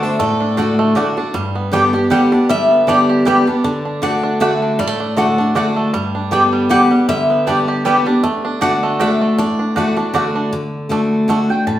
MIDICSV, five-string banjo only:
0, 0, Header, 1, 2, 480
1, 0, Start_track
1, 0, Key_signature, 2, "major"
1, 0, Tempo, 382653
1, 246, Time_signature, 3, 2, 24, 8
1, 14794, End_track
2, 0, Start_track
2, 0, Title_t, "Five-string banjo"
2, 0, Program_c, 0, 105
2, 0, Note_on_c, 0, 57, 82
2, 33, Note_on_c, 0, 62, 58
2, 203, Note_off_c, 0, 57, 0
2, 243, Note_on_c, 0, 57, 79
2, 492, Note_off_c, 0, 62, 0
2, 507, Note_on_c, 0, 62, 54
2, 703, Note_off_c, 0, 62, 0
2, 718, Note_on_c, 0, 62, 58
2, 939, Note_off_c, 0, 57, 0
2, 990, Note_on_c, 0, 57, 77
2, 1187, Note_off_c, 0, 62, 0
2, 1202, Note_on_c, 0, 62, 65
2, 1460, Note_off_c, 0, 62, 0
2, 1475, Note_on_c, 0, 62, 56
2, 1644, Note_off_c, 0, 57, 0
2, 1687, Note_on_c, 0, 55, 78
2, 1689, Note_off_c, 0, 62, 0
2, 1949, Note_on_c, 0, 59, 58
2, 2166, Note_on_c, 0, 62, 57
2, 2382, Note_off_c, 0, 55, 0
2, 2432, Note_on_c, 0, 67, 61
2, 2604, Note_off_c, 0, 59, 0
2, 2645, Note_on_c, 0, 55, 61
2, 2907, Note_off_c, 0, 62, 0
2, 2912, Note_on_c, 0, 62, 61
2, 3086, Note_off_c, 0, 67, 0
2, 3114, Note_off_c, 0, 55, 0
2, 3129, Note_on_c, 0, 55, 86
2, 3399, Note_on_c, 0, 59, 50
2, 3610, Note_off_c, 0, 62, 0
2, 3615, Note_on_c, 0, 62, 65
2, 3824, Note_off_c, 0, 55, 0
2, 3881, Note_on_c, 0, 67, 60
2, 4050, Note_off_c, 0, 59, 0
2, 4092, Note_on_c, 0, 55, 67
2, 4356, Note_off_c, 0, 62, 0
2, 4361, Note_on_c, 0, 62, 60
2, 4531, Note_off_c, 0, 67, 0
2, 4569, Note_off_c, 0, 62, 0
2, 4569, Note_on_c, 0, 62, 65
2, 4572, Note_off_c, 0, 55, 0
2, 4834, Note_off_c, 0, 62, 0
2, 4834, Note_on_c, 0, 62, 56
2, 5045, Note_off_c, 0, 62, 0
2, 5050, Note_on_c, 0, 62, 62
2, 5312, Note_off_c, 0, 62, 0
2, 5312, Note_on_c, 0, 62, 64
2, 5530, Note_off_c, 0, 62, 0
2, 5530, Note_on_c, 0, 62, 61
2, 5798, Note_off_c, 0, 62, 0
2, 5798, Note_on_c, 0, 62, 64
2, 6011, Note_on_c, 0, 55, 76
2, 6114, Note_off_c, 0, 55, 0
2, 6114, Note_on_c, 0, 57, 82
2, 6271, Note_off_c, 0, 62, 0
2, 6271, Note_on_c, 0, 62, 57
2, 6470, Note_off_c, 0, 57, 0
2, 6485, Note_on_c, 0, 57, 62
2, 6753, Note_off_c, 0, 62, 0
2, 6753, Note_on_c, 0, 62, 59
2, 6966, Note_off_c, 0, 62, 0
2, 6966, Note_on_c, 0, 62, 68
2, 7182, Note_off_c, 0, 57, 0
2, 7231, Note_on_c, 0, 57, 63
2, 7440, Note_off_c, 0, 57, 0
2, 7445, Note_on_c, 0, 55, 81
2, 7707, Note_off_c, 0, 62, 0
2, 7712, Note_on_c, 0, 62, 57
2, 7926, Note_on_c, 0, 59, 64
2, 8141, Note_off_c, 0, 55, 0
2, 8188, Note_on_c, 0, 55, 71
2, 8407, Note_on_c, 0, 67, 56
2, 8621, Note_off_c, 0, 59, 0
2, 8657, Note_off_c, 0, 55, 0
2, 8672, Note_on_c, 0, 55, 59
2, 8873, Note_off_c, 0, 55, 0
2, 8888, Note_on_c, 0, 55, 72
2, 9102, Note_off_c, 0, 67, 0
2, 9157, Note_on_c, 0, 59, 55
2, 9363, Note_off_c, 0, 62, 0
2, 9368, Note_on_c, 0, 62, 68
2, 9582, Note_off_c, 0, 55, 0
2, 9637, Note_on_c, 0, 67, 70
2, 9807, Note_off_c, 0, 59, 0
2, 9851, Note_on_c, 0, 55, 66
2, 10114, Note_off_c, 0, 62, 0
2, 10119, Note_on_c, 0, 62, 66
2, 10286, Note_off_c, 0, 67, 0
2, 10324, Note_off_c, 0, 55, 0
2, 10329, Note_on_c, 0, 57, 77
2, 10591, Note_off_c, 0, 62, 0
2, 10596, Note_on_c, 0, 62, 62
2, 10809, Note_off_c, 0, 62, 0
2, 10809, Note_on_c, 0, 62, 65
2, 11072, Note_off_c, 0, 57, 0
2, 11077, Note_on_c, 0, 57, 76
2, 11291, Note_off_c, 0, 62, 0
2, 11291, Note_on_c, 0, 62, 66
2, 11552, Note_off_c, 0, 57, 0
2, 11557, Note_on_c, 0, 57, 58
2, 11758, Note_off_c, 0, 62, 0
2, 11773, Note_on_c, 0, 62, 67
2, 12017, Note_off_c, 0, 62, 0
2, 12032, Note_on_c, 0, 62, 56
2, 12205, Note_off_c, 0, 57, 0
2, 12229, Note_off_c, 0, 62, 0
2, 12244, Note_on_c, 0, 62, 62
2, 12492, Note_off_c, 0, 62, 0
2, 12507, Note_on_c, 0, 62, 62
2, 12707, Note_off_c, 0, 62, 0
2, 12722, Note_on_c, 0, 62, 58
2, 12973, Note_off_c, 0, 62, 0
2, 12988, Note_on_c, 0, 62, 61
2, 13203, Note_off_c, 0, 62, 0
2, 13690, Note_on_c, 0, 57, 65
2, 13694, Note_on_c, 0, 62, 67
2, 13719, Note_off_c, 0, 62, 0
2, 13804, Note_off_c, 0, 57, 0
2, 14169, Note_on_c, 0, 57, 65
2, 14175, Note_on_c, 0, 62, 57
2, 14200, Note_off_c, 0, 62, 0
2, 14283, Note_off_c, 0, 57, 0
2, 14794, End_track
0, 0, End_of_file